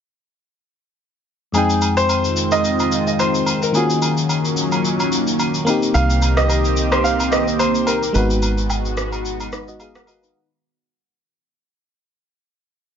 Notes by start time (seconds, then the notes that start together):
1.52 F2 D#3 G#3 C4 D#4 F4 G#4, high agogo, shaker
1.57 G5
1.70 shaker
1.82 high agogo, shaker
1.97 C5, shaker
2.09 high agogo, shaker
2.24 shaker
2.36 shaker
2.51 D#5, high agogo, shaker
2.64 shaker
2.79 high agogo, shaker
2.92 shaker
3.07 D#5, shaker
3.19 C5, high agogo, shaker
3.35 shaker
3.46 high agogo, shaker
3.62 A#4, shaker
3.72 D#3 F#3 A#3 C#4 F4 G#4, high agogo, shaker
3.77 F#4
3.90 shaker
4.02 high agogo, shaker
4.17 shaker
4.29 high agogo, shaker
4.45 shaker
4.57 shaker
4.72 high agogo, shaker
4.85 shaker
5.00 high agogo, shaker
5.12 shaker
5.27 shaker
5.39 high agogo, shaker
5.54 shaker
5.65 A#3 C4 D#4 G4, high agogo, shaker
5.70 G4
5.83 shaker
5.94 C2 F5, high agogo, shaker
6.10 shaker
6.22 high agogo, shaker
6.37 D#5, cross-stick, shaker
6.49 high agogo, shaker
6.65 shaker
6.77 shaker
6.92 C5, cross-stick, high agogo, shaker
7.04 F5, shaker
7.20 high agogo, shaker
7.32 D#5, cross-stick, shaker
7.47 shaker
7.59 C5, high agogo, shaker
7.75 shaker
7.87 A#4, high agogo, shaker
8.03 shaker
8.13 G#1 G#3 B3 D#4 F#4 B4, high agogo, shaker
8.18 F#4
8.30 shaker
8.42 high agogo, shaker
8.58 shaker
8.70 high agogo, low woodblock, shaker
8.85 shaker
8.97 cross-stick, shaker
9.12 high agogo, shaker
9.25 shaker
9.40 high agogo, shaker
9.53 D#4 B4, cross-stick, shaker
9.68 F#4 D#5, shaker
9.80 G#4 F5, high agogo, shaker
9.95 A#4 F#5, cross-stick, shaker
10.07 F#4 D#5, high agogo, shaker
10.23 D#4 B4, shaker